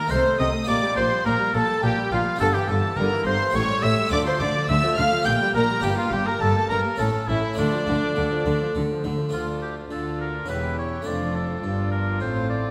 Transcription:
Already playing: A#3 A#4 A#5
0.07 C2 A3 C4 D#4 A4 C5 C6
0.11 C3 C5
0.25 A3
0.38 C2 C3 C4 D#5 D#6
0.53 A3
0.64 A#3 D4 G4 D5
0.68 A#1 A#2 D5 D6
0.82 G3
0.96 A#1 A#2 A#3 C5 C6
1.10 G3
1.25 A#1 A#2 A#3 A#4 A#5
1.39 G3
1.53 A#1 A#2 A#3 A4 A5
1.68 G3
1.82 A#1 A#2 A#3 G4 G5
1.97 G3
2.11 A#1 A#2 A#3 F4 F5
2.25 G3
2.36 D3 A#3 E4 G4
2.40 G1 G2 A4 A5
2.54 E3 G4 G5
2.68 G1 G2 D3 A4 A5
2.82 E3
2.97 G1 G2 D3 A#4 A#5
3.12 E3
3.25 G1 G2 D3 C5 C6
3.40 E3
3.50 A3 E4 G4
3.54 A1 A2 C#5 C#6
3.68 G3
3.83 A1 A2 A3 E5 E6
3.97 G3
4.07 A3 D4 F4
4.11 D2 D3 A3 D5 D6
4.25 F3 C5 C6
4.39 D2 D3 A3 D5 D6
4.53 F3
4.67 D2 D3 A3 E5 E6
4.82 F3
4.96 D2 D3 A3 F5 F6
5.11 F3
5.22 A#3 D4 G4 G6
5.26 A#1 A#2 A#3 G5
5.41 G3
5.54 A#1 A#2 A#3 A#4 A#5
5.70 G3
5.80 G1 G3 A#3 D4 G4 G5
5.84 G2 G4
5.97 A#3 F4 F5
6.12 G1 G2 G3 G4 G5
6.26 A#3 A#4 A#5
6.41 G1 G2 G3 A4 A5
6.56 A#3
6.69 G1 G2 G3 A#4 A#5
6.84 A#3
6.96 A1 A3 C#4 E4 A4 A5
7.00 A2
7.13 A3
7.28 A1 A2 C#4 E4 E5
7.43 A3
7.53 A3 D4 F4
7.57 D2 D3 A3 D4 D5
7.72 F3
7.87 D2 D3 A3
8.02 F3
8.16 D2 D3 A3
8.32 F3
8.46 D2 D3 A3
8.61 F3
8.75 D2 D3 A3
8.91 F3
9.04 D2 D3 A3
9.19 F3
9.29 A3 D4 F4
9.33 D2 D4 F4 A5
9.62 G4
9.91 D2 D3 D4 F4 A4 F5
10.21 A#4
10.46 E1 E2 C#4 E4 G4 B4 G5
10.79 C#5
11.02 A3 D4 F4
11.06 F1 F2 D5
11.35 A4
11.63 G1 G2 D4 F4
11.92 A#4
12.20 A1 A2 C4 C5 A5
12.49 D5

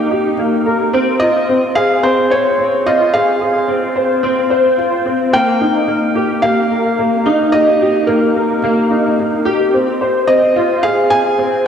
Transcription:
Already playing: A#3 D#4 G4 A#4 G5
0.11 G4
0.39 A#3
0.66 A#4
0.93 C4
1.20 F4 D#5
1.49 C4
1.75 G#4 F5
2.03 C4 C5
2.30 C5 C#5
2.58 C4
2.86 F4 D#5
3.14 G#4 F5
3.41 G#4
3.68 C4
3.96 C5
4.23 C4
4.50 C5
4.78 F4
5.06 C4
5.33 A#3 G5
5.61 D#4
5.87 A#3
6.15 G4
6.42 A#3 F5
6.71 A#4
6.99 A#3
7.26 D#4
7.52 G4 D#5
7.81 G4
8.07 A#3 A#4
8.36 A#4
8.64 A#3
8.91 D#4
9.19 A#3
9.45 G4
9.73 C4
10.01 C5
10.27 C4 D#5
10.56 F4
10.83 G#4 F5
11.10 G#4 G#5
11.38 C4

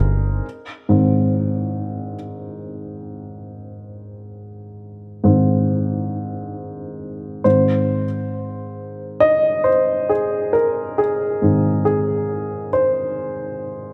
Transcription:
Already playing: G#3 C4 D#4 G#4 A#4 C5
0.00 G1
0.89 G#2 D#3 C4
5.24 G#2 D#3 C4
7.44 G#2 D#3 C4 C5
9.20 D#5
9.64 C5
10.09 G#4
10.53 A#4
10.98 G#4
11.42 G#2 D#3 C4
11.85 G#4
12.73 C5

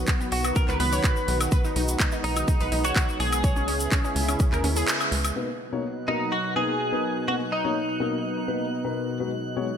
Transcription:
Already playing: D#3 F#3 B3 F#4
0.07 B3, kick, clap, closed hi-hat, shaker
0.21 B3, shaker
0.32 B1 F#4, open hi-hat
0.44 B3, closed hi-hat, high woodblock, shaker
0.56 B3 A#4, kick, closed hi-hat, shaker
0.68 C#2 B4, clap, shaker
0.80 C#2 B3 B4, open hi-hat
0.92 C#5, open hi-hat, shaker
1.04 kick, clap, closed hi-hat, shaker
1.16 shaker
1.28 B1, open hi-hat
1.41 closed hi-hat, high woodblock, shaker
1.51 G#3 B4, kick, closed hi-hat, shaker
1.64 D#4, shaker
1.76 B1 D#4, open hi-hat
1.88 closed hi-hat, shaker
2.00 D#4, kick, clap, closed hi-hat, shaker
2.12 D#4, shaker
2.24 B1 D#4, open hi-hat
2.36 D#4, closed hi-hat, high woodblock, shaker
2.48 D#4, kick, closed hi-hat, shaker
2.60 B1 B4, open hi-hat, shaker
2.72 B1 D#4, open hi-hat
2.84 F#4 C#5, closed hi-hat, shaker
2.96 kick, clap, closed hi-hat, shaker
3.09 shaker
3.20 B1 G#4, open hi-hat
3.32 closed hi-hat, high woodblock, shaker
3.44 C#3 E4 C#5, kick, closed hi-hat, shaker
3.56 C#4, shaker
3.68 C#2 C#4, open hi-hat
3.80 closed hi-hat, shaker
3.92 C#4, kick, clap, closed hi-hat, shaker
4.04 C#4, shaker
4.16 C#2, open hi-hat
4.28 C#4, closed hi-hat, high woodblock, shaker
4.39 C#4, kick, closed hi-hat, shaker
4.52 D#2 A#4, clap, shaker
4.64 D#2 C#4, open hi-hat
4.76 G#4, open hi-hat, shaker
4.88 clap, closed hi-hat, shaker
5.00 high woodblock, shaker
5.12 C#2, open hi-hat
5.25 closed hi-hat, high woodblock, shaker
5.36 B2 F#3 A#3 B3 D#4 B4 F#6
5.72 B2 A#3 D#4 C#5
6.08 B2 A#3 D#4 A#4
6.32 F#4
6.56 B2 A#3 D#4 G#4 B4
6.92 B2 D#4 A#4 B4
7.28 B2 A#3 B3 D#4 F#4 B4
7.52 D#4
7.64 B2 A#3 D#4 C#5
8.00 B2 A#3 D#4 A#4
8.48 B2 A#3 D#4 B4
8.84 B2 D#4 A#4 B4
9.20 B2 F#3 G#3 F#4 B4
9.56 B2 G#3 F#4 C#5

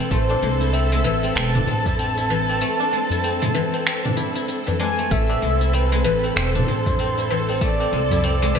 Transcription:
Already playing: E3 G#3 C4 D4 E4 A4
0.00 C4
0.10 A1 A3 C5, kick, open hi-hat, cabasa
0.29 D4, tabla na, cabasa
0.42 C2 G#3
0.60 E4, cabasa
0.73 C4 E5, open hi-hat, cabasa
0.92 G#3, cabasa
1.04 A1 E3
1.23 C4, open hi-hat, cabasa
1.35 E1 C4 A5, finger snap, open hi-hat, cabasa
1.55 D4, mid tom, open hi-hat, cabasa
1.67 A1 G#3
1.86 E4, kick, tabla na, tabla ge, cabasa
1.99 C4, open hi-hat, cabasa
2.17 E4, open hi-hat, tabla tin, cabasa
2.30 E3
2.49 C4, open hi-hat, tabla na, tabla tin, cabasa
2.61 A3, open hi-hat, cabasa
2.80 D4, open hi-hat, tabla na, tabla tin, cabasa
2.93 G#3
3.10 E4, open hi-hat, tabla tin, tabla ge, cabasa
3.24 C4, open hi-hat, cabasa
3.42 G#3, mid tom, open hi-hat, cabasa
3.55 E3
3.74 C4, open hi-hat, cabasa
3.86 C4, finger snap, open hi-hat, cabasa
4.04 D4, mid tom, open hi-hat, tabla tin, cabasa
4.17 E4, tabla na
4.35 E4, open hi-hat, cabasa
4.48 E4, open hi-hat, cabasa
4.67 E3, open hi-hat, tabla na, tabla tin, tabla ge, cabasa
4.79 G#3 G#5, tabla na
4.98 A3, open hi-hat, tabla na, cabasa
5.11 A1 A3 A4 E5, kick, open hi-hat, cabasa
5.29 C4, tabla na, cabasa
5.42 C2 G#3
5.61 E4, cabasa
5.73 C4 B4, open hi-hat, cabasa
5.92 G#3, cabasa
6.04 A1 E3
6.24 C4, open hi-hat, cabasa
6.36 E1 C4 C5, finger snap, open hi-hat, cabasa
6.55 D4, mid tom, open hi-hat, cabasa
6.68 A1 G#3
6.86 E4, kick, tabla na, tabla ge, cabasa
6.99 C4, open hi-hat, cabasa
7.17 E4, open hi-hat, tabla tin, cabasa
7.30 E3
7.49 C4, open hi-hat, tabla na, tabla tin, cabasa
7.61 A3 D5, kick, open hi-hat, cabasa
7.80 C4, tabla na, tabla tin, cabasa
7.92 C2 G#3
8.11 E4, tabla tin, tabla ge, cabasa
8.24 C4, open hi-hat, cabasa
8.42 G#3, cabasa
8.55 A1 E3

